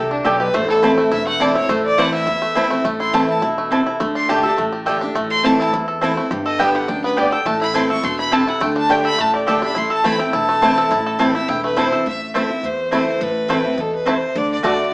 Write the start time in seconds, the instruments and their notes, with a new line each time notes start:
Already playing: upright bass C2, steel-string acoustic guitar C3, five-string banjo A3 G4 A4, fiddle A4
0.11 five-string banjo D4, fiddle D4
0.24 upright bass B1, steel-string acoustic guitar B2, mandolin A3 G4 D5 G5, fiddle G4, five-string banjo A4
0.40 five-string banjo G4, fiddle B4
0.54 upright bass A1, steel-string acoustic guitar A2, five-string banjo A3, fiddle C5
0.68 five-string banjo E4, fiddle A4
0.82 steel-string acoustic guitar E3 A3 C4 E4, mandolin C4 E4 C5 A5, five-string banjo E4
0.98 five-string banjo A3
1.11 upright bass E1, steel-string acoustic guitar E2, five-string banjo E4, fiddle E5
1.27 five-string banjo A3, fiddle F#5
1.40 steel-string acoustic guitar E3 A3 C4 E4, mandolin C4 E4 C5 A5, five-string banjo E4, fiddle D5
1.55 steel-string acoustic guitar C4 E4, five-string banjo E4, fiddle C#5
1.69 upright bass A1, steel-string acoustic guitar A2, five-string banjo A3, fiddle C5
1.85 fiddle D5
1.98 steel-string acoustic guitar E3 A3 C4 E4, five-string banjo A3, mandolin C4 E4 C5 A5, fiddle F#5
2.13 five-string banjo E4, fiddle E5
2.27 upright bass E2, steel-string acoustic guitar E2, five-string banjo E4
2.42 five-string banjo A3
2.55 steel-string acoustic guitar E3 A3 C4 E4, mandolin C4 E4 C5 A5, five-string banjo E4
2.70 five-string banjo A3, steel-string acoustic guitar C4 E4
2.84 upright bass A1, steel-string acoustic guitar A2, five-string banjo A3
3.00 five-string banjo E4, fiddle C6
3.13 steel-string acoustic guitar E3 A3 C4 E4, mandolin C4 E4 C5 A5, five-string banjo E4, fiddle A5
3.29 five-string banjo E4, fiddle A5
3.42 upright bass E1, steel-string acoustic guitar B2, five-string banjo E4
3.58 five-string banjo A3
3.71 steel-string acoustic guitar C3, mandolin C4 E4 C5 A5, five-string banjo A4
3.87 five-string banjo E4
4.00 upright bass D2, steel-string acoustic guitar D3, five-string banjo A3
4.15 five-string banjo D4, fiddle C6
4.29 steel-string acoustic guitar D3 A3 D4 G4, mandolin A3 G4 D5 G5, five-string banjo G4, fiddle A5
4.43 steel-string acoustic guitar D4 G4, five-string banjo A4, fiddle A5
4.58 upright bass A1, steel-string acoustic guitar A2, five-string banjo A3
4.72 five-string banjo G4
4.86 steel-string acoustic guitar D3 A3 D4 G4, mandolin A3 G4 D5 G5, five-string banjo A4
5.01 five-string banjo D4, steel-string acoustic guitar D4 G4
5.15 upright bass A1, steel-string acoustic guitar A2, five-string banjo A3
5.30 fiddle C6
5.43 steel-string acoustic guitar E3 A3 C4 E4, five-string banjo E3, mandolin C4 E4 C5 A5, fiddle A5
5.60 five-string banjo E4, fiddle A5
5.73 upright bass E2, steel-string acoustic guitar E2, five-string banjo E4
5.88 five-string banjo A4
6.01 steel-string acoustic guitar E3 A3 C4 E4, mandolin C4 E4 C5 A5, five-string banjo E4
6.17 five-string banjo A3, steel-string acoustic guitar C4 E4
6.31 upright bass G1, steel-string acoustic guitar G2, five-string banjo G4
6.46 five-string banjo A4, fiddle D#5
6.59 steel-string acoustic guitar D3 G3 B3 G4, mandolin B3 G4 D5 G5, five-string banjo B3, fiddle E5
6.75 five-string banjo G4, fiddle F#5
6.88 upright bass D2, steel-string acoustic guitar F#2, five-string banjo D4, fiddle G5
7.04 five-string banjo B3, fiddle B4
7.17 steel-string acoustic guitar G2, mandolin B3 G4 D5 G5, five-string banjo G4, fiddle D5
7.32 five-string banjo A4, fiddle G5
7.45 upright bass A1, steel-string acoustic guitar A2, five-string banjo A3, fiddle A5
7.62 five-string banjo E4, fiddle B5
7.74 steel-string acoustic guitar E3 A3 C4 E4, mandolin C4 E4 C5 A5, five-string banjo E4, fiddle C6
7.89 steel-string acoustic guitar C4 E4, five-string banjo A4, fiddle C#6
8.03 upright bass E1, steel-string acoustic guitar B2, five-string banjo A3, fiddle C6
8.19 five-string banjo E4, fiddle B5
8.31 steel-string acoustic guitar C3, mandolin C4 E4 C5 A5, five-string banjo A4, fiddle A5
8.48 five-string banjo E4, fiddle F#5
8.60 upright bass D2, steel-string acoustic guitar D3, five-string banjo A3, fiddle G5
8.76 five-string banjo D4, fiddle A5
8.89 steel-string acoustic guitar D3 A3 D4 G4, mandolin A3 G4 D5 G5, five-string banjo G4, fiddle G5
9.05 five-string banjo A4, fiddle B5
9.18 upright bass A1, steel-string acoustic guitar A2, five-string banjo A3, fiddle A5
9.34 five-string banjo G4, fiddle D5
9.46 steel-string acoustic guitar D3 A3 D4 G4, mandolin A3 G4 D5 G5, five-string banjo A4, fiddle G5
9.62 five-string banjo D4, steel-string acoustic guitar D4 G4, fiddle B5
9.75 upright bass A1, steel-string acoustic guitar A2, five-string banjo E4, fiddle C6
9.90 five-string banjo A4, fiddle A5
10.04 steel-string acoustic guitar E3 A3 C4 E4, five-string banjo A3, mandolin C4 E4 C5 A5, fiddle B5
10.19 steel-string acoustic guitar C4 E4, five-string banjo E4, fiddle G5
10.33 upright bass E1, steel-string acoustic guitar E2, five-string banjo E4, fiddle A5
10.49 five-string banjo A3
10.61 steel-string acoustic guitar E3 A3 C4 E4, mandolin C4 E4 C5 A5, five-string banjo E4
10.78 five-string banjo A4
10.91 upright bass A1, steel-string acoustic guitar A2, five-string banjo E4
11.07 five-string banjo A4
11.19 steel-string acoustic guitar E3 A3 C4 E4, five-string banjo A3, mandolin C4 E4 C5 A5
11.35 steel-string acoustic guitar C4 E4, five-string banjo E4, fiddle E5
11.48 upright bass E1, steel-string acoustic guitar E2, five-string banjo E4, fiddle G5
11.64 five-string banjo A3, fiddle B4
11.76 steel-string acoustic guitar E3 A3 C4 E4, mandolin C4 E4 C5 A5, five-string banjo E4, fiddle C5
11.92 steel-string acoustic guitar C4 E4, five-string banjo A4
12.06 upright bass A1, steel-string acoustic guitar A2, fiddle E5
12.34 steel-string acoustic guitar E3 A3 C4 E4, five-string banjo A3 E4, mandolin C4 E4 C5 A5, fiddle E5
12.50 steel-string acoustic guitar C4 E4
12.63 upright bass E2, steel-string acoustic guitar E2, fiddle C5
12.91 steel-string acoustic guitar E3 A3 C4 E4, five-string banjo A3 E4, mandolin C4 E4 C5 A5, fiddle C5
13.21 upright bass A1, steel-string acoustic guitar A2, fiddle B4
13.48 steel-string acoustic guitar E3 A3 C4 E4, five-string banjo A3 E4, mandolin C4 E4 C5 A5
13.64 steel-string acoustic guitar C4 E4
13.77 upright bass E2, steel-string acoustic guitar B2, fiddle A4
13.96 fiddle B4
14.06 steel-string acoustic guitar C3, five-string banjo A3 E4, mandolin C4 E4 C5 A5, fiddle C5
14.35 upright bass D2, steel-string acoustic guitar D3, fiddle D5
14.52 fiddle D5
14.63 upright bass D2, steel-string acoustic guitar D3 A3 D4 F#4, mandolin A3 F#4 D5 A5, five-string banjo A3 D4 F#4, fiddle D5